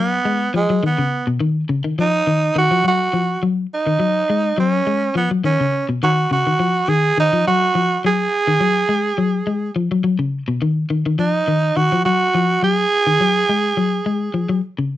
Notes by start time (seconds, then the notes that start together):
Already playing: F#3 B3
0.25 G#3
0.54 F3 G#3
0.70 F#3
0.83 D#3 B3
0.98 C#3
1.27 B2
1.40 D#3
1.69 C#3
1.84 D#3
1.99 F3 D#4
2.27 D#3
2.56 D#3 F#4
2.71 F3
2.84 F#3 F#4
3.13 F3
3.43 F#3
3.74 D#4
3.87 D#3
4.00 F#3
4.30 G#3
4.58 F#3 C#4
4.87 G#3
5.15 F3 B3
5.31 F#3
5.44 D#3 C#4
5.61 C#3
5.89 B2
6.03 D#3 F#4
6.31 C#3 F#4
6.47 D#3
6.60 F3
6.88 D#3 G#4
7.18 D#3 D#4
7.33 F3
7.47 F#3 F#4
7.75 F3
8.05 F#3 G#4
8.47 D#3
8.60 F#3
8.89 G#3
9.18 F#3
9.47 G#3
9.76 F3
9.92 F#3
10.04 F#3
10.19 C#3
10.48 B2
10.62 D#3
10.90 D#3
11.06 D#3
11.19 F3 D#4
11.48 D#3
11.77 D#3 F#4
11.92 F3
12.05 F#3 F#4
12.35 F3
12.63 F#3 G#4
13.07 D#3
13.21 F#3
13.49 G#3
13.77 F#3
14.06 G#3
14.34 F3
14.49 F#3
14.79 C#3